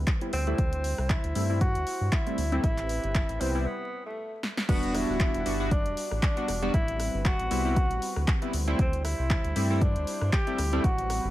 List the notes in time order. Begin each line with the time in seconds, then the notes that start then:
Already playing: G3 C4 B4
0.07 kick, clap, closed hi-hat
0.21 G3 B3 C4 E4, closed hi-hat
0.33 D2 C4 E4 C5, open hi-hat
0.47 G3 A3 C4 E4, closed hi-hat
0.58 D2, kick, closed hi-hat
0.73 closed hi-hat
0.84 open hi-hat
0.98 C2, cross-stick
1.10 E4, kick, clap, closed hi-hat
1.24 D2, closed hi-hat
1.35 G2 G3 A3 C4 E4, open hi-hat
1.50 G3 A3 C4 E4
1.61 F#4, kick, closed hi-hat
1.75 D2, closed hi-hat
1.87 open hi-hat
2.01 G2
2.12 E4, kick, clap, closed hi-hat
2.27 G3 A3 C4 E4, closed hi-hat
2.38 D2, open hi-hat
2.52 G3 A3 C4 E4, closed hi-hat
2.64 A1 C4 E4 G4 B4, kick, closed hi-hat
2.78 clap, closed hi-hat
2.89 open hi-hat
3.04 G1, closed hi-hat
3.15 kick, clap, closed hi-hat
3.29 A1, closed hi-hat
3.40 C2 G3 B3 C4 E4, open hi-hat
3.55 G3 B3 C4 E4
3.66 B3
4.06 A3
4.43 snare
4.57 snare
4.69 E1 G3 B3 D4 F#4, kick, closed hi-hat, crash
4.83 closed hi-hat
4.94 E4, cross-stick, open hi-hat
5.09 D1
5.20 kick, clap, closed hi-hat
5.34 E1, closed hi-hat
5.46 G1 G3 B3 D4 F#4, open hi-hat
5.60 G3 B3 D4 F#4
5.71 D4, kick, closed hi-hat
5.86 E1, closed hi-hat
5.97 open hi-hat
6.11 A1, cross-stick
6.23 D4, kick, clap, closed hi-hat
6.37 G3 B3 D4 F#4, closed hi-hat
6.48 E1, cross-stick, open hi-hat
6.62 G3 B3 D4 F#4
6.74 A1 G3 C4 E4 B4, kick, closed hi-hat
6.88 closed hi-hat
7.00 cross-stick, open hi-hat
7.14 G1
7.25 F#4, kick, clap, closed hi-hat
7.39 A1, closed hi-hat
7.51 C2 G3 B3 C4 E4, open hi-hat
7.65 G3 B3 C4 E4
7.76 kick, closed hi-hat
7.91 A1, closed hi-hat
8.02 open hi-hat
8.16 D2, cross-stick
8.28 kick, clap, closed hi-hat
8.42 G3 B3 C4 E4, closed hi-hat
8.53 D2 E4 C5, open hi-hat
8.67 G3 A3 C4 E4, closed hi-hat
8.79 D2 C4, kick, closed hi-hat
8.93 closed hi-hat
9.04 E4, cross-stick, open hi-hat
9.19 C2
9.30 kick, clap, closed hi-hat
9.44 D2, closed hi-hat
9.56 G2 G3 A3 C4 E4, open hi-hat
9.70 G3 A3 C4 E4
9.81 D4, kick, closed hi-hat
9.96 D2, closed hi-hat
10.07 open hi-hat
10.21 G2, cross-stick
10.33 G4, kick, clap, closed hi-hat
10.47 G3 A3 C4 E4, closed hi-hat
10.58 D2, cross-stick, open hi-hat
10.73 G3 A3 C4 E4, closed hi-hat
10.84 A1 C4 F#4 B4, kick, closed hi-hat
10.98 closed hi-hat
11.10 cross-stick, open hi-hat
11.24 G1